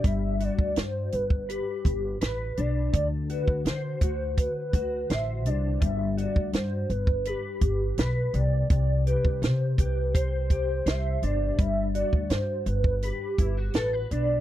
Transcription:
<<
  \new Staff \with { instrumentName = "Soft synth lead" } { \time 4/4 \key g \major \tempo 4 = 83 e''8 d''8 c''8 b'8 g'4 b'8 d''8 | d''8 b'8 c''8 c''8 b'4 e''8 d''8 | e''8 d''8 c''8 b'8 g'4 b'8 d''8 | d''8 b'8 c''8 b'8 c''4 e''8 d''8 |
e''8 d''8 c''8 b'8 g'4 b'8 d''8 | }
  \new Staff \with { instrumentName = "Clean electric guitar" } { \time 4/4 \key g \major g8 fis'4 r8 b'4 b'8 d'8 | d8 fis'8 c''8 fis'4 fis'8 c''8 d'8 | g8 fis'4 r8 b'4 b'8 c8 | c8 g'4 g'8 c''8 g'8 c''8 d'8 |
g8 fis'4 r8 b'8 e'16 fis'16 a'16 b'16 d'8 | }
  \new Staff \with { instrumentName = "Upright bass" } { \clef bass \time 4/4 \key g \major g,,8. d,16 g,8 g,,8. r16 g,,8 a,,8 b,,8 | d,8. d,16 d8 d,8. r16 d,8 a,,8 c,8 | g,,8. d,16 g,8 g,,8. r16 g,,8 b,,8 c,8 | c,8. c,16 c8 c,4. c,8 g,,8 |
g,,8. d,16 g,8 g,,8. r16 g,,8 a,,8 b,,8 | }
  \new DrumStaff \with { instrumentName = "Drums" } \drummode { \time 4/4 <hh bd>8 hh16 bd16 <hh sn>8 hh16 bd16 hh8 <hh bd>8 <hh sn>8 hh8 | <hh bd>8 hh16 bd16 <hh sn>8 <hh bd>8 <hh bd>8 <hh bd>8 <hh sn>8 hh8 | <hh bd>8 hh16 bd16 <hh sn>8 hh16 bd16 hh8 <hh bd>8 <hh sn>8 hh8 | <hh bd>8 hh16 bd16 <hh sn>8 <hh bd>8 <hh bd>8 <hh bd>8 <hh sn>8 hh8 |
<hh bd>8 hh16 bd16 <hh sn>8 hh16 bd16 hh8 <hh bd>8 <hh sn>8 hh8 | }
>>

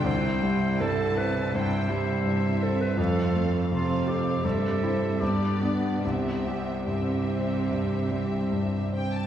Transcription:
<<
  \new Staff \with { instrumentName = "Violin section" } { \time 4/4 \key c \major \tempo 4 = 79 g''4 a''4 g''8 e''8 e''4 | f''4 f''4 e''4 d''4 | e''4 e''2~ e''8 g''16 a''16 | }
  \new Staff \with { instrumentName = "Clarinet" } { \time 4/4 \key c \major c''4 a'8 b'8 c''4. a'16 b'16 | a'8. r16 f'8 g'8 a'4 g'8 b8 | b4 c'2~ c'8 r8 | }
  \new Staff \with { instrumentName = "Viola section" } { \time 4/4 \key c \major << { e'2. e'4 | a'4 a'4 g'4 g'4 | g'4 g'2~ g'8 r8 | } \\ { c'8 e'4. e'4 c'4 | c'4 c'4 c'4 b4 | c'4 c'2~ c'8 r8 | } >> }
  \new Staff \with { instrumentName = "Grand piano" } { \clef bass \time 4/4 \key c \major c,8 g8 g,8 c'8 g,8 g8 g,8 c'8 | f,8 a8 c8 c'8 g,8 <c' e'>8 g,8 <b d'>8 | c,8 g8 g,8 c'8 g,8 g8 g,8 c'8 | }
  \new Staff \with { instrumentName = "Cello section" } { \clef bass \time 4/4 \key c \major c1 | f,2 g,2 | c2.~ c8 r8 | }
>>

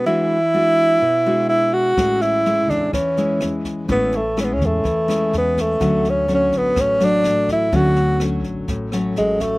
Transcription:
<<
  \new Staff \with { instrumentName = "Tenor saxophone" } { \time 4/4 \key a \major \tempo 4 = 125 e'2. e'8 fis'8~ | fis'8 e'4 d'8 cis'4. r8 | b8 a8 cis'32 b32 cis'16 a4. b8 a8~ | a8 cis'8 cis'8 b8 cis'8 d'4 e'8 |
fis'4 r2 gis8 a8 | }
  \new Staff \with { instrumentName = "Nylon-string guitar" } { \time 4/4 \key a \major << { <gis d' fis'>8 r8 <gis d' fis'>4 r8 <gis d' fis'>4. | <gis cis' e'>4 <gis cis' e'>4 r8 <gis cis' e'>4. | <gis cis' e'>8 r8 <gis cis' e'>4 r8 <gis cis' e'>4. | <fis a cis'>4 <fis a cis'>4. <fis a>4. |
<fis a cis'>4 <fis a cis'>4. <fis a cis'>4. | } \\ { e2 b,2 | a,2 e2 | a,2 e2 | d2 a,2 |
d2 a,2 | } >> }
  \new Staff \with { instrumentName = "Upright bass" } { \clef bass \time 4/4 \key a \major r1 | a,,4. e,8 e,4 e,4 | a,,4. e,8 e,4 e,4 | d,4. a,,8 a,,4 a,,4 |
d,4. a,,8 a,,4 a,,4 | }
  \new DrumStaff \with { instrumentName = "Drums" } \drummode { \time 4/4 r4 r4 r4 r4 | <bd ss sn>8 sn8 sn8 <bd sn>8 <bd ss sn>8 sn8 <ss sn>8 <bd sn>8 | <bd sn>8 sn8 <ss sn>8 <bd sn>8 <bd sn>8 <ss sn>8 sn8 <bd sn>8 | <bd ss sn>8 sn8 sn8 <bd sn>8 <bd ss sn>8 sn8 <ss sn>8 <bd sn>8 |
<bd sn>8 sn8 <ss sn>8 <bd sn>8 <bd sn>8 <ss sn>8 sn8 <bd sn>8 | }
>>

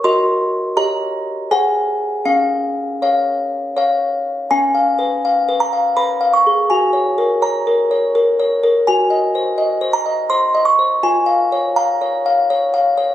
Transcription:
\new Staff \with { instrumentName = "Music box" } { \time 3/4 \key des \major \tempo 4 = 82 << { c'''4 bes''4 aes''4 | f''2~ f''8 r8 | aes''4. bes''8 ces'''8 des'''8 | aes''4 bes''2 |
aes''4. bes''8 c'''8 des'''8 | aes''4 bes''2 | } \\ { <ges' bes' ees''>4 <g' des'' ees''>4 <aes' c'' ges''>4 | des'4 <des'' f''>4 <des'' f''>4 | \tuplet 3/2 { des'8 f''8 ces''8 f''8 ces''8 f''8 ces''8 f''8 aes'8 } | \tuplet 3/2 { ges'8 des''8 bes'8 des''8 bes'8 des''8 bes'8 des''8 bes'8 } |
\tuplet 3/2 { ges'8 ees''8 c''8 ees''8 c''8 ees''8 c''8 ees''8 c''8 } | \tuplet 3/2 { f'8 f''8 des''8 f''8 des''8 f''8 des''8 f''8 des''8 } | } >> }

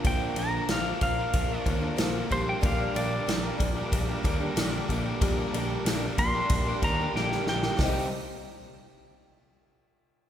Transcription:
<<
  \new Staff \with { instrumentName = "Pedal steel guitar" } { \time 4/4 \key g \phrygian \tempo 4 = 93 g''8 bes''8 f''8 f''4 r4 c''16 g''16 | f''8 d''2 r4. | r4. c'''4 bes''8 g''8 g''8 | r1 | }
  \new Staff \with { instrumentName = "Accordion" } { \time 4/4 \key g \phrygian r1 | <g d' bes'>1~ | <g d' bes'>1 | <g ees' c''>8 r2. r8 | }
  \new Staff \with { instrumentName = "Overdriven electric guitar" } { \time 4/4 \key g \phrygian <bes, d bes d' f'>8 <d bes d' f'>8 <bes, d bes d' f'>16 <bes d' f'>8 <bes d' f'>8 <bes d' f'>16 <d bes d' f'>16 <bes d' f'>16 <bes, d bes d' f'>8 <bes, d g d' g'>16 <g d' g'>16 | <bes, d g d' g'>8 <d g d' g'>8 <bes, d g d' g'>16 <g d' g'>8 <g d' g'>8 <g d' g'>16 <d g d' g'>16 <g d' g'>16 <bes, d g d' g'>8 <d g d' g'>16 <g d' g'>16 | <bes, d g d' g'>8 <d g d' g'>8 <bes, d g d' g'>16 <g d' g'>8 <g d' g'>8 <g d' g'>16 <d g d' g'>16 <g d' g'>16 <bes, d g d' g'>8 <d g d' g'>16 <g d' g'>16 | <c ees g ees' g'>8 r2. r8 | }
  \new Staff \with { instrumentName = "Steel-string acoustic guitar" } { \time 4/4 \key g \phrygian <bes, d f bes d' bes'>8 <f bes d' bes'>8 <bes, d f bes d' bes'>16 <f bes d' bes'>16 <f bes d' bes'>16 <f bes d' bes'>8 <f bes d' bes'>16 <f bes d' bes'>16 <f bes d' bes'>16 <bes, d f bes d' bes'>8 <g bes d' bes'>8 | <bes, d g bes d' bes'>8 <g bes d' bes'>8 <bes, d g bes d' bes'>16 <g bes d' bes'>16 <g bes d' bes'>16 <g bes d' bes'>8 <g bes d' bes'>16 <g bes d' bes'>16 <g bes d' bes'>16 <bes, d g bes d' bes'>8 <g bes d' bes'>8 | <bes, d g bes d' bes'>8 <g bes d' bes'>8 <bes, d g bes d' bes'>16 <g bes d' bes'>16 <g bes d' bes'>16 <g bes d' bes'>8 <g bes d' bes'>16 <g bes d' bes'>16 <g bes d' bes'>16 <bes, d g bes d' bes'>8 <g bes d' bes'>8 | <c g c' ees' g'>8 r2. r8 | }
  \new Staff \with { instrumentName = "Picked electric bass" } { \clef bass \time 4/4 \key g \phrygian bes,,8 bes,,8 bes,,8 bes,,8 bes,,8 ees,8 bes,,8 bes,,8 | bes,,8 bes,,8 bes,,8 bes,,8 bes,,8 ees,8 bes,,8 bes,,8 | bes,,8 bes,,8 bes,,8 bes,,8 bes,,8 ees,8 bes,,8 bes,,8 | c,8 r2. r8 | }
  \new DrumStaff \with { instrumentName = "Drums" } \drummode { \time 4/4 <bd cymr>8 cymr8 <cymr sn>8 <bd cymr>8 <bd cymr>8 <bd cymr>8 <cymr sn>8 <bd cymr>8 | <bd cymr>8 cymr8 <cymr sn>8 <bd cymr>8 <bd cymr>8 <bd cymr>8 <cymr sn>8 <bd cymr>8 | <bd cymr>8 cymr8 <cymr sn>8 <bd cymr>8 <bd cymr>8 <bd cymr>8 sn16 sn16 sn16 sn16 | <hho bd sn>4 r4 r4 r4 | }
>>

